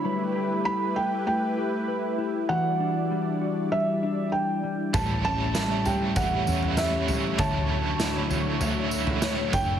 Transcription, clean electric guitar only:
X:1
M:4/4
L:1/8
Q:1/4=98
K:Edor
V:1 name="Clean electric guitar"
[G,B] G E B A, G B E | [E,F] D G, F G, D2 G, | [A,,G] C G, G E, C G G, | [D,c] F D c A,2 c D |]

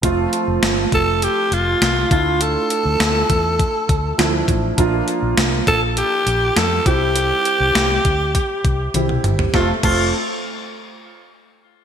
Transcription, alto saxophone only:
X:1
M:4/4
L:1/8
Q:1/4=101
K:F
V:1 name="Alto saxophone"
z3 A G F2 F | A6- A z | z3 A G2 A G- | G6 z2 |
F F z6 |]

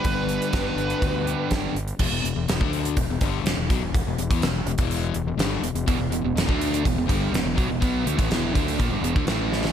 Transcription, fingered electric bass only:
X:1
M:4/4
L:1/16
Q:1/4=124
K:Em
V:1 name="Fingered electric bass" clef=bass
G,,,4 G,,,2 G,,,2 D,,4 G,,,2 G,,,2 | E,,, E,,, E,,, E,,, E,,, D,,3 E,,, E,,, G,,,2 E,,, E,,, B,,, E,,,- | E,,, E,,, E,,, E,, E,,,2 E,,, E,,,3 E,,, E,,, G,,,2 E,,, E,,, | E,,, E,,, E,,, E,,, E,,, D,,3 E,,, E,,, G,,,2 E,,, E,,, B,,, E,,, |
B,,,2 D,, A,,, E,,,2 D,,2 ^A,,, G,,, E,,, D,, =A,,,4 |]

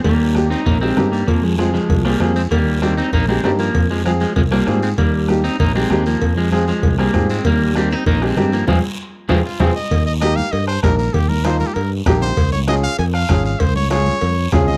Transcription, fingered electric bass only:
X:1
M:4/4
L:1/8
Q:1/4=195
K:Ebmix
V:1 name="Fingered electric bass" clef=bass
E,,4 B,,,2 G,,2 | F,,4 C,,2 F,,2 | E,,4 B,,,2 G,,2 | F,,4 C,,2 A,,2 |
E,,4 B,,,2 E,,2 | F,,4 C,,2 A,,2 | E,,4 B,,,2 G,,2 | F,, z3 F,, z F,, z |
E,,4 G,,2 B,,,2 | E,,4 G,,2 B,,,2 | D,,4 F,,2 A,,,2 | D,,4 F,,2 D,,2 |]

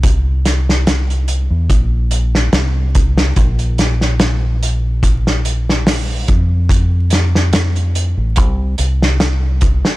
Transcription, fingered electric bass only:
X:1
M:4/4
L:1/16
Q:"Swing 16ths" 1/4=72
K:Bb
V:1 name="Fingered electric bass" clef=bass
C,,6- C,, =E,, B,,,4 C,,4 | B,,,12- B,,,2 F,,2- | F,,6- F,, A,,, C,,2 C,,4- C,, z |]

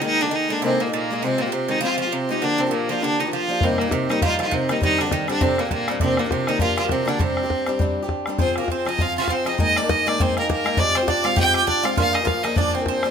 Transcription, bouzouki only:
X:1
M:4/4
L:1/8
Q:"Swing" 1/4=201
K:Fdor
V:1 name="Bouzouki" clef=bass
E, D, E, D, C, B,, B,,2 | C, B,, C, E, F, F, C,2 | D, C, B,, F, D, E, F,2 | C, B,, C, E, F, F, C, E, |
E, D, E, D, C, B,, B,, B,, | C, B,, C, E, F, F, C, D, | C,6 z2 | C B, C E F F C E |
E D E D C B, B,2 | D C D F G G D F | F E F E D C C2 |]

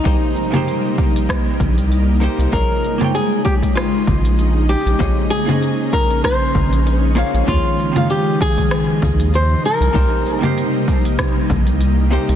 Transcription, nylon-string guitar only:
X:1
M:4/4
L:1/8
Q:"Swing 16ths" 1/4=97
K:Bbdor
V:1 name="Nylon-string guitar"
E3 z4 z | B2 A G F3 G- | G A2 B c3 z | F2 G A3 c B- |
B6 z2 |]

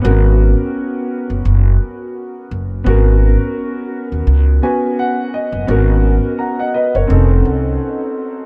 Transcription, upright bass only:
X:1
M:4/4
L:1/16
Q:"Swing 16ths" 1/4=85
K:G#m
V:1 name="Upright bass" clef=bass
G,,,3 z4 F,,, F,,,2 z4 F,,,2 | G,,,3 z4 D,, C,,2 z4 z F,,, | G,,,3 z4 F,,, =F,,,2 z6 |]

